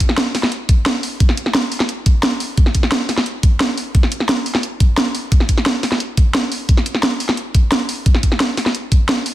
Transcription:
0.00 kick medium
0.00 closed hi-hat loud
0.09 snare soft
0.18 snare loud
0.18 closed hi-hat medium
0.35 snare soft
0.35 open hi-hat medium
0.43 snare soft
0.43 snare medium
0.52 closed hi-hat medium
0.69 kick loud
0.69 closed hi-hat loud
0.86 snare loud
0.86 closed hi-hat medium
1.03 open hi-hat medium
1.20 kick loud
1.20 closed hi-hat medium
1.29 snare medium
1.37 closed hi-hat loud
1.46 snare soft
1.55 snare loud
1.55 closed hi-hat medium
1.72 open hi-hat medium
1.80 snare soft
1.80 snare medium
1.89 closed hi-hat medium
2.06 kick loud
2.06 closed hi-hat loud
2.23 snare loud
2.23 closed hi-hat medium
2.40 open hi-hat medium
2.57 kick loud
2.57 closed hi-hat medium
2.66 snare soft
2.75 kick medium
2.75 closed hi-hat medium
2.83 snare medium
2.92 snare loud
2.92 closed hi-hat medium
3.09 snare soft
3.09 open hi-hat medium
3.18 snare soft
3.18 snare medium
3.26 closed hi-hat medium
3.43 kick loud
3.43 closed hi-hat medium
3.60 snare loud
3.60 closed hi-hat medium
3.78 open hi-hat medium
3.95 kick loud
3.95 closed hi-hat medium
4.03 snare soft
4.12 closed hi-hat medium
4.20 snare soft
4.29 snare loud
4.29 closed hi-hat medium
4.46 open hi-hat medium
4.55 snare soft
4.55 snare medium
4.63 closed hi-hat medium
4.80 kick loud
4.80 closed hi-hat medium
4.98 snare loud
4.98 closed hi-hat medium
5.15 open hi-hat medium
5.32 kick loud
5.32 closed hi-hat medium
5.40 snare soft
5.49 kick medium
5.49 closed hi-hat medium
5.58 snare soft
5.66 snare loud
5.66 closed hi-hat medium
5.83 snare soft
5.83 open hi-hat medium
5.92 snare soft
5.92 snare medium
6.00 closed hi-hat medium
6.17 kick loud
6.17 closed hi-hat medium
6.35 snare loud
6.35 closed hi-hat medium
6.52 open hi-hat medium
6.69 kick loud
6.69 closed hi-hat medium
6.77 snare soft
6.86 closed hi-hat medium
6.95 snare soft
7.03 snare loud
7.03 closed hi-hat medium
7.20 open hi-hat medium
7.29 snare soft
7.29 snare medium
7.37 closed hi-hat medium
7.55 kick loud
7.55 closed hi-hat loud
7.72 snare loud
7.72 closed hi-hat medium
7.89 open hi-hat medium
8.06 kick loud
8.06 closed hi-hat medium
8.15 snare soft
8.23 kick medium
8.23 closed hi-hat loud
8.32 snare soft
8.40 snare loud
8.40 closed hi-hat medium
8.57 snare soft
8.57 open hi-hat medium
8.66 snare soft
8.66 snare medium
8.75 closed hi-hat medium
8.92 kick loud
8.92 closed hi-hat loud
9.09 snare loud
9.09 closed hi-hat medium
9.26 open hi-hat medium

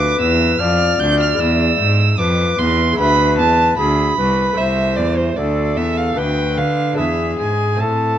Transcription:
0.00 0.16 D2 medium
0.00 0.19 D2 medium
0.00 0.16 A3 medium
0.00 1.34 F4 medium
0.00 0.62 B4 medium
0.00 1.34 B4 medium
0.00 0.20 D6 loud
0.19 0.55 E2 medium
0.19 0.59 E2 medium
0.19 0.61 E6 loud
0.59 0.95 F2 medium
0.59 0.99 F2 medium
0.59 1.91 D5 medium
0.59 1.01 F6 loud
0.98 1.35 D2 medium
0.98 1.39 D2 medium
0.98 1.19 G6 loud
1.20 1.41 F6 loud
1.34 2.14 G#3 medium
1.34 2.92 E4 soft
1.34 2.93 B4 medium
1.39 1.75 E2 medium
1.39 1.78 E2 medium
1.39 2.20 E6 loud
1.78 2.14 G#2 medium
1.78 2.18 G#2 medium
2.18 2.54 F2 medium
2.18 2.58 F2 medium
2.18 2.95 B4 medium
2.18 2.60 D6 loud
2.58 2.94 E2 medium
2.58 2.98 E2 medium
2.58 2.98 C6 loud
2.93 4.11 G#3 medium
2.93 4.52 E4 medium
2.93 4.52 B4 medium
2.97 3.34 D2 medium
2.97 3.40 D2 medium
2.97 3.77 B4 medium
2.97 3.38 B5 loud
3.38 3.74 E2 medium
3.38 3.78 E2 medium
3.38 3.77 A5 loud
3.77 4.13 D2 medium
3.77 4.17 D2 medium
3.77 4.17 G#4 medium
3.77 4.59 B5 loud
4.18 4.57 C2 medium
4.18 4.59 B4 medium
4.53 6.11 A3 medium
4.53 6.12 E4 medium
4.53 6.12 C5 medium
4.57 5.00 C2 medium
4.57 5.39 C5 medium
4.57 4.98 E5 loud
4.96 5.33 E2 medium
4.96 5.37 E2 medium
4.96 5.18 D5 loud
5.17 5.38 C5 medium
5.36 5.79 D2 medium
5.36 5.73 D2 medium
5.36 6.19 A4 medium
5.36 5.78 D5 medium
5.77 6.16 E2 medium
5.77 6.13 E2 medium
5.77 5.99 E5 medium
5.97 6.19 F5 medium
6.13 6.59 D2 medium
6.13 6.94 A3 medium
6.13 6.93 D4 medium
6.13 6.95 B4 medium
6.17 6.54 D2 medium
6.17 6.99 B4 medium
6.17 6.59 G5 loud
6.57 6.94 D3 medium
6.57 7.00 D3 medium
6.57 6.97 F5 medium
6.93 7.75 G#3 medium
6.93 7.76 D4 medium
6.93 7.77 B4 medium
6.97 7.35 E2 medium
6.97 7.39 E2 medium
6.97 7.80 G#4 medium
6.97 7.38 E5 medium
7.39 7.76 G#2 medium
7.39 7.82 G#2 medium
7.39 7.82 G#5 medium
7.75 8.18 A3 soft
7.75 8.18 C4 soft
7.75 8.18 A4 soft
7.80 8.17 A2 soft
7.80 8.18 A2 medium
7.80 8.18 A4 medium
7.80 8.18 A5 loud

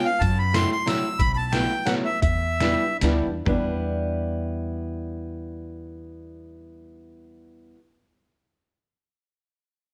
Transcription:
0.05 0.21 F5 loud
0.20 0.64 F#2 loud
0.20 0.38 A5 loud
0.20 kick medium
0.20 closed hi-hat soft
0.39 0.54 B5 medium
0.53 0.71 F#3 medium
0.53 0.71 A3 medium
0.53 0.71 C4 medium
0.53 0.71 E4 medium
0.53 0.71 C6 loud
0.53 snare medium
0.53 closed hi-hat medium
0.72 0.88 C6 medium
0.86 1.04 F#3 medium
0.86 1.04 A3 medium
0.86 1.04 C4 medium
0.86 1.04 E4 medium
0.86 1.21 E6 medium
0.86 snare medium
0.86 closed hi-hat medium
1.19 1.63 B1 medium
1.19 1.32 B5 loud
1.19 kick medium
1.19 closed hi-hat soft
1.33 1.53 A5 medium
1.33 1.37 B5 medium
1.52 1.71 F#3 medium
1.52 1.70 A3 medium
1.52 1.71 B3 medium
1.52 1.71 E4 medium
1.52 1.88 G5 medium
1.52 snare medium
1.52 closed hi-hat soft
1.85 2.05 F#3 medium
1.85 2.05 A3 medium
1.85 2.05 B3 medium
1.85 2.05 E4 medium
1.85 1.94 F#5 medium
1.85 snare medium
1.85 closed hi-hat soft
2.05 2.20 E5 medium
2.22 2.74 E2 medium
2.22 2.97 E5 medium
2.22 kick medium
2.22 closed hi-hat soft
2.60 2.82 G3 medium
2.60 2.82 B3 medium
2.60 2.82 D4 medium
2.60 2.82 E4 medium
2.60 snare medium
2.60 closed hi-hat soft
3.01 3.23 D2 medium
3.01 3.26 G3 medium
3.01 3.26 B3 medium
3.01 3.26 D4 medium
3.01 3.26 E4 medium
3.01 snare medium
3.01 closed hi-hat medium
3.27 3.45 E2 medium
3.45 7.75 E2 medium
3.45 7.74 G3 medium
3.45 7.75 B3 medium
3.45 7.75 D4 medium
3.45 7.76 E4 medium
3.45 kick medium
3.45 floor tom medium

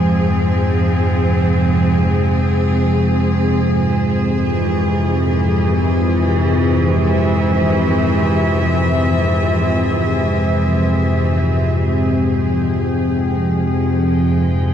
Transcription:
0.00 14.74 F2 medium
0.00 14.74 G#2 medium
0.00 14.74 C3 medium
0.00 4.12 F3 medium
0.00 4.13 C4 medium
0.00 14.74 G#4 medium
0.00 12.14 C5 medium
4.49 12.13 E3 medium
7.06 12.12 E5 medium
12.09 14.74 G5 medium
13.15 14.74 F3 medium
14.61 14.74 C4 medium

